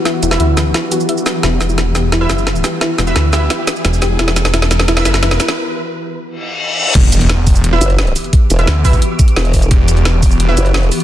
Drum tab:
CC |----------------|----------------|----------------|----------------|
HH |x-x-x-x-x-x-x-x-|x-x-x-x-x-x-x-x-|x-x-x-x-x-x-x-x-|x-x-x-x-x-x-x-x-|
SH |--xx--x---xx-xx-|--xx--x---xx-xx-|--xx--x---xx-xx-|--xx--x---xx-xx-|
SD |o--o--o-o-----o-|o-o-o-o-o-o-o-o-|o-o-o-o-o-o-o-o-|oooooooooooooooo|
BD |----------------|----------------|----------------|----------------|

CC |----------------|x---------------|----------------|----------------|
HH |----------------|x-xxx-o-x-xxxxox|x-xxx-o-x-xxxxox|x-xxx-o-x-xxxxox|
SH |----------------|--x---xx--x---x-|--x---xx--x---xx|--x---xx--x---x-|
SD |----------------|----o-------o---|----o-------o---|----o-------o---|
BD |----------------|o-----o---------|o-----oo--o---o-|o-----o---------|